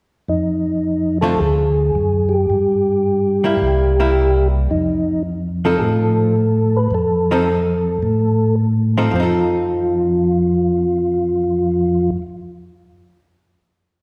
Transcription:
0.28 F2 D#4
1.21 D3 A3 C4 F4 A4
1.39 D2 G#4
1.95 F#2
2.29 G4
2.50 G2
3.44 G3 A#3 E4
3.62 C2
4.00 G3 A#3 E4
4.71 F2 D#4
5.65 F3 C4 D#4 A4
5.79 A2 G#4
5.84 A4
6.77 B4
6.91 F2 A4
7.31 F3 C4 D#4 A4
8.03 A2
8.98 F3 C4 D#4 A4
9.11 F2 F3 F4
9.15 C4
9.20 D#4 A4

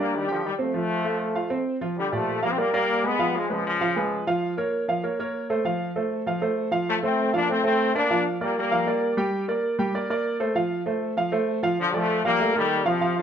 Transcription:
Already playing: D4
0.00 G3 A#3 D5
0.15 D#3 G3
0.28 D3 F3 G4 G5
0.45 D#3 G3
0.59 F3 A3 C4 C5
0.74 F3 F4
1.05 A3 A4
1.35 F4 F5
1.50 C4 C5
1.81 F3 F4
1.98 D3 G3
2.12 A#2 F3 A3 G4 D5
2.42 F3 G3 A#3 F4 F5
2.50 C4
2.57 G3 A#3 A#4 D5
2.74 G3 A#3 A#4 D5
3.04 G#3 B3 G#4 B4
3.19 F3 F4 F5
3.36 F3 G#3
3.50 C#3 F3 G#3 G#4 B4
3.66 C#3 F3
3.81 F3 F4 F5
3.96 G#3 G#4 B4
4.27 F3 F4 F5
4.57 A#3 A#4 C#5
4.88 F3 F4 F5
5.03 A#3 A#4 C#5
5.19 A#3 A#4 C#5
5.50 A3 A4 C5
5.65 F3 F4 F5
5.96 A3 A4 C5
6.26 F3 F4 F5
6.41 A3 A4 C5
6.71 F3 F4 F5
6.89 F3 A3
7.03 A3 C4 A4 C5
7.33 F3 A#3 D4 F4 F5
7.49 A3 C4 A4 C5
7.63 A3 C4 A4 C5
7.95 A#3 D4 A#4 D5
8.10 F3 F4 F5
8.41 G3 A#3 A#4 D5
8.57 G3 A#3
8.71 F3 F4 F5
8.87 A#3 A#4 D5
9.17 G3 G4 G5
9.48 A#3 A#4 D5
9.79 G3 G4 G5
9.94 A#3 A#4 D5
10.10 A#3 A#4 D5
10.40 A3 A4 C5
10.55 F3 F4 F5
10.86 A3 A4 C5
11.17 F3 F4 F5
11.32 A3 A4 C5
11.63 F3 F4 F5
11.80 D3 F3
11.93 F3 A3 A4 D5
12.24 F3 G3 A#3 F4 F5
12.40 A3 A4 A#4
12.55 D#3 G3 A#3 A4 A#4
12.85 C3 F3 F4 F5
13.01 F3 F4 F5
13.18 D3 F3

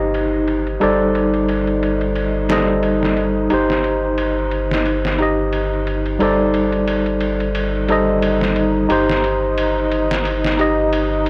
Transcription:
Already playing: G1 D#4 G4 C5 D#5
0.14 ride
0.48 ride
0.67 ride
0.80 G1 G3 D#4 A4 C5 D5, ride
1.15 ride
1.34 ride
1.49 ride
1.67 ride
1.83 ride
2.01 ride
2.15 ride
2.49 G3 D#4 A4 C5 D#5, snare, ride
2.68 ride
2.83 ride
3.03 snare
3.17 ride
3.50 G1 D#4 G4 C5, ride
3.70 snare
3.84 ride
4.18 ride
4.51 ride
4.71 snare
4.86 ride
5.05 snare
5.19 D#4 G4 D#5, ride
5.53 ride
5.87 ride
6.06 ride
6.19 G1 G3 D#4 A4 C5 D5, ride
6.54 ride
6.72 ride
6.88 ride
7.06 ride
7.21 ride
7.40 ride
7.55 ride
7.89 G3 D#4 A4 C5 D#5, ride
8.22 ride
8.41 snare
8.56 ride
8.89 G1 D#4 G4 C5, ride
9.10 snare
9.24 ride
9.58 ride
9.92 ride
10.11 snare
10.25 ride
10.45 snare
10.57 D#4 G4 D#5, ride
10.93 ride
11.26 ride

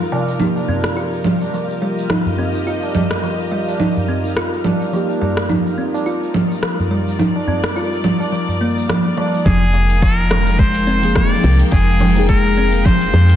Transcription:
Already playing: F3 G3 A#3 D#4 F4 G4 A#4 D5 F5
0.12 C3, tabla na
0.28 shaker
0.39 F3 A#3 D#4 G4, low conga, shaker
0.56 G4, tabla na, shaker
0.68 C4, tabla na, tabla ge
0.84 cross-stick, shaker
0.97 F4, shaker
1.13 shaker
1.24 G3, tabla tin, low conga
1.42 tabla na, shaker
1.54 F3, shaker
1.70 D#5, shaker
1.82 G3
1.98 shaker
2.10 D#4, cross-stick, low conga, shaker
2.26 tabla ge, shaker
2.38 C4
2.55 shaker
2.67 F4, shaker
2.83 tabla na, shaker
2.95 G3, tabla na, low conga, tabla ge
3.11 cross-stick, shaker
3.23 F3, shaker
3.40 shaker
3.52 G3, tabla tin
3.68 tabla na, shaker
3.80 D#4, low conga, shaker
3.97 tabla ge, shaker
4.08 C4
4.25 shaker
4.37 F4, cross-stick, shaker
4.53 shaker
4.64 G3, tabla na, low conga
4.82 shaker
4.92 F3 G3 A#3 D#4, shaker
4.96 G4
5.10 tabla na, shaker
5.18 G3 D#4, tabla na, tabla ge
5.37 cross-stick, shaker
5.49 D#4, low conga, shaker
5.66 shaker
5.78 C4, tabla tin
5.94 tabla na, shaker
6.06 F4, shaker
6.14 D5
6.23 shaker
6.34 G3, low conga
6.52 shaker
6.62 F3, cross-stick, shaker
6.79 tabla ge, shaker
6.91 G3
7.08 shaker
7.19 D#4, low conga, shaker
7.36 tabla na, tabla tin, shaker
7.47 C4, tabla na, tabla ge
7.64 cross-stick, shaker
7.76 F4, shaker
7.93 shaker
8.04 G3, tabla tin, low conga
8.20 tabla na, shaker
8.32 F3, shaker
8.48 tabla tin, tabla ge, shaker
8.61 A#3
8.78 shaker
8.89 F3, cross-stick, low conga, shaker
9.06 tabla tin, shaker
9.17 F3, tabla na
9.35 shaker
9.46 F1 F3 G#4, kick, open hi-hat, low conga, shaker
9.63 F5, shaker
9.74 F3, open hi-hat
9.79 G5
9.84 A#4
9.90 open hi-hat, shaker
10.02 F3 A#4, kick, open hi-hat, shaker
10.20 shaker
10.31 F3, cross-stick, open hi-hat, low conga
10.47 open hi-hat, shaker
10.59 G#3 C5, kick, shaker
10.75 open hi-hat, shaker
10.87 C4, open hi-hat
11.02 F3 A#3 D#4 G#4, open hi-hat, shaker
11.14 F3 D#4 D5, kick, cross-stick, open hi-hat, low conga, shaker
11.18 G#4
11.32 shaker
11.44 C2 F3, open hi-hat
11.59 open hi-hat, shaker
11.72 F1 F3 G#4, kick, open hi-hat, shaker
11.89 shaker
12.00 F3, open hi-hat, low conga
12.15 F3 A#3 D#4 G#4, open hi-hat, shaker
12.29 G#3 A#4, kick, open hi-hat, shaker
12.46 shaker
12.57 C4, open hi-hat
12.73 open hi-hat, shaker
12.85 F3 C5, kick, low conga, shaker
13.01 open hi-hat, shaker
13.13 F2 F3 A#3 D#4 G#4, open hi-hat
13.29 open hi-hat, shaker

